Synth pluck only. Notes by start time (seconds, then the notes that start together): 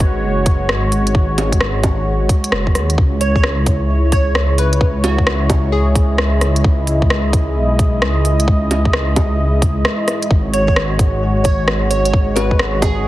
3.21 C#5
3.36 C#5
4.13 C#5
4.59 B4
5.04 F#4
5.72 G#4
10.54 C#5
10.67 C#5
11.44 C#5
11.90 C#5
12.05 C#5
12.36 B4
12.82 G#4